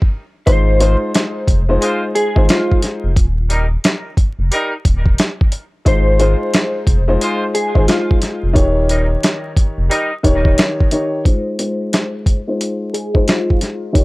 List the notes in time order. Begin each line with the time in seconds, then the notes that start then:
0.02 kick
0.46 G#1 G#3 D#4 F4 C5, kick, closed hi-hat
0.80 G#3 D#4 F4 C5, closed hi-hat
1.15 snare, closed hi-hat
1.48 F1, kick, closed hi-hat
1.69 G#3 D#4 F4 C5
1.81 G#3 F4 C5, closed hi-hat
2.15 G#4, closed hi-hat
2.35 G#1 G#3 D#4 F4 C5, kick
2.49 F4, snare, closed hi-hat
2.72 kick
2.82 snare, closed hi-hat
3.04 F1
3.16 D#1, kick, closed hi-hat
3.49 G3 D#4 A#4, closed hi-hat
3.84 snare, closed hi-hat
4.17 kick, closed hi-hat
4.39 F1
4.52 G3 D#4 A#4, closed hi-hat
4.85 D#1, kick, closed hi-hat
5.06 kick
5.18 snare, closed hi-hat
5.41 kick
5.52 closed hi-hat
5.85 G#1 G#3 D#4 F4 C5, kick, closed hi-hat
6.19 G#3 D#4 F4 C5, closed hi-hat
6.54 snare, closed hi-hat
6.87 F1, kick, closed hi-hat
7.08 G#3 D#4 F4 C5
7.21 G#3 F4 C5, closed hi-hat
7.54 G#4, closed hi-hat
7.74 G#1 G#3 D#4 F4 C5, kick
7.88 F4, snare, closed hi-hat
8.11 kick
8.22 snare, closed hi-hat
8.43 F1
8.53 D#1 D#3 D#4 G4 C#5, kick, closed hi-hat
8.89 G3 D#4 A#4, closed hi-hat
9.23 snare, closed hi-hat
9.56 kick, closed hi-hat
9.78 F1
9.89 G3 D#4 A#4, closed hi-hat
10.23 D#1 D#3 D#4 G4 C#5, kick, closed hi-hat
10.45 kick
10.58 snare, closed hi-hat
10.80 kick
10.91 D#3 D#4 G4 C#5, closed hi-hat
11.25 G#3 D#4 F4 C5, kick, closed hi-hat
11.58 G#3 D#4 F4 C5, closed hi-hat
11.93 snare, closed hi-hat
12.26 kick, closed hi-hat
12.47 G#3 D#4 F4 C5
12.61 closed hi-hat
12.93 G#4, closed hi-hat
13.14 G#3 D#4 F4 C5, kick
13.28 F4, snare, closed hi-hat
13.50 kick
13.61 snare, closed hi-hat
13.93 D#3 D#4 G4 C#5, kick, closed hi-hat